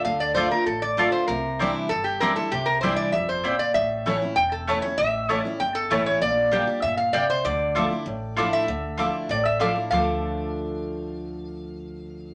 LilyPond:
<<
  \new Staff \with { instrumentName = "Resonator guitar played with a steel bar" } { \time 4/4 \key d \minor \tempo 4 = 195 f''8 d''8 c''8 bes'8 a'8 d''4 c''8 | bes'4. r8 a'8 g'8 bes'8 a'8 | g'8 bes'8 c''8 d''8 e''8 c''4 d''8 | e''4. r8 g''8 a'4 cis''8 |
e''4. r8 g''8 a'4 cis''8 | d''2 e''8 f''8 d''8 c''8 | d''2.~ d''8 e''8~ | e''4. r8 d''8 e''8 f''8. r16 |
f''1~ | f''1 | }
  \new Staff \with { instrumentName = "Mandolin" } { \time 4/4 \key d \minor r4 <a f' d'' a''>8 r4. <a f' d'' a''>8 r8 | r4 <c' e' d'' g''>8 r4. <c' e' d'' g''>8 r8 | r4 <c' e' d'' g''>8 r4. <c' e' d'' g''>8 r8 | r4 <a e' cis'' a''>8 r4. <a e' cis'' a''>8 r8 |
r4 <a e' cis'' a''>8 r4. <a e' cis'' a''>8 r8 | r4 <bes g' d'' g''>8 r4. <bes g' d'' g''>8 r8 | r4 <f' a' e'' d'''>8 r4. <f' a' e'' d'''>8 r8 | r4 <f' a' e'' d'''>8 r4. <f' a' e'' d'''>8 r8 |
<a' d'''>1~ | <a' d'''>1 | }
  \new Staff \with { instrumentName = "Steel-string acoustic guitar" } { \time 4/4 \key d \minor << { r4 <d a d' f'>8 <d' f'>8 r4 <d a d' f'>4 | r4 <e g d' e'>4 r4 <e g d' e'>8 <d' e'>8 | r4 <e g d' e'>4 r2 | r4 <e a cis' e'>8 <cis' e'>8 r4 <e a cis' e'>8 <cis' e'>8 |
r4 <e a cis' e'>8 <cis' e'>8 r4 <e a cis' e'>4 | r4 <d g d' g'>8 <d' g'>8 r2 | r4 <f a d' e'>8 <d' e'>8 r4 <f a d' e'>4 | r4 <f a d' e'>4 r4 <f a d' e'>8 <d' e'>8 |
<d f a d'>1~ | <d f a d'>1 | } \\ { d2 a,2 | c2 g,2 | c2 f,4 bes,4 | a,2 r2 |
a,2 e,2 | bes,2 bes,4 c4 | d2 a,2 | d2 a,2 |
r1 | r1 | } >> }
  \new Staff \with { instrumentName = "Upright bass" } { \clef bass \time 4/4 \key d \minor d,2 a,,2 | c,2 g,,2 | c,2 g,,2 | a,,2 e,,2 |
a,,2 g,,4 a,,4 | bes,,2 g,2 | d,2 a,,2 | d,2 a,,2 |
d,1~ | d,1 | }
>>